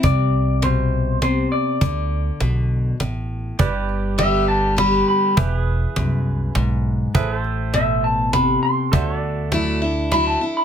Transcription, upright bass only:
X:1
M:3/4
L:1/8
Q:1/4=101
K:G
V:1 name="Upright bass" clef=bass
C,,6 | D,,2 B,,,2 A,,,2 | G,,,6 | E,,,2 C,,2 B,,,2 |
A,,,6 | D,,6 |]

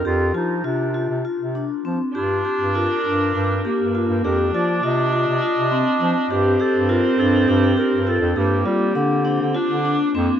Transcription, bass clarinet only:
X:1
M:7/8
L:1/16
Q:1/4=101
K:Gm
V:1 name="Bass clarinet" clef=bass
F,,2 F,2 C,3 C, z C,2 z F, z | G,,2 z G,,2 z G,,2 G,,2 z G,,2 G,, | F,,2 F,2 C,3 C, z C,2 z F, z | G,,2 z G,,2 z G,,2 G,,2 z G,,2 F,, |
G,,2 G,2 D,3 D, z D,2 z F,, z |]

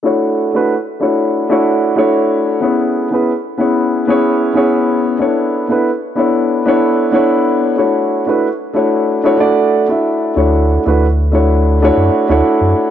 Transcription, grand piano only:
X:1
M:4/4
L:1/16
Q:"Swing 16ths" 1/4=93
K:Dlyd
V:1 name="Grand piano"
[A,DEFc]3 [A,DEFB] z2 [A,DEFc]3 [A,DEFc]3 [A,DEFc]4 | [B,CEGc]3 [B,CEGB] z2 [B,CEGc]3 [B,CEGc]3 [B,CEGc]4 | [B,DEAc]3 [B,DEAB] z2 [B,DEAc]3 [B,DEAc]3 [B,DEAc]4 | [A,DEFc]3 [A,DEFB] z2 [A,DEFc]3 [A,DEFc] [A,DEFd]3 [A,DEFe]3 |
[A,DEFc]3 [A,DEFB] z2 [A,DEFc]3 [A,DEFc]3 [A,DEFc]4 |]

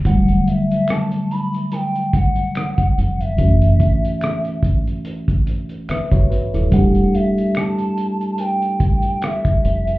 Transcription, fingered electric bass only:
X:1
M:4/4
L:1/16
Q:"Swing 16ths" 1/4=72
K:Edor
V:1 name="Fingered electric bass" clef=bass
E,,,2 z12 =F,,,2 | F,,,2 z8 z3 G,,, z ^D,,, | E,,,2 z12 =F,,,2 |]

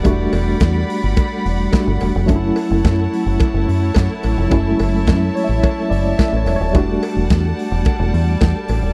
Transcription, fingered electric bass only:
X:1
M:4/4
L:1/16
Q:1/4=108
K:Edor
V:1 name="Fingered electric bass" clef=bass
E,,,2 E,,,2 E,,2 z G,,, z2 E,,,2 z G,,, E,,, =F,,, | F,,,2 z F,,, F,,2 z F,,, z F,,, F,,2 F,, z A,,, =F,,, | F,,,2 F,,,2 F,,2 z A,,, z2 F,,,2 z A,,, E,,, ^D,,, | E,,,2 z E,,, E,,2 z E,,, z E,,, E,,2 E,, z A,,, ^D,,, |]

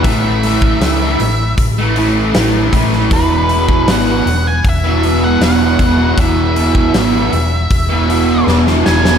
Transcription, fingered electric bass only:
X:1
M:4/4
L:1/8
Q:1/4=78
K:E
V:1 name="Fingered electric bass" clef=bass
A,,,2 C,, A,,, A,,,2 A,,, A,,, | E,,,2 G,,, E,,, E,,,2 E,,, E,,, | E,,,2 G,,, E,,, E,,,2 E,,, E,,, |]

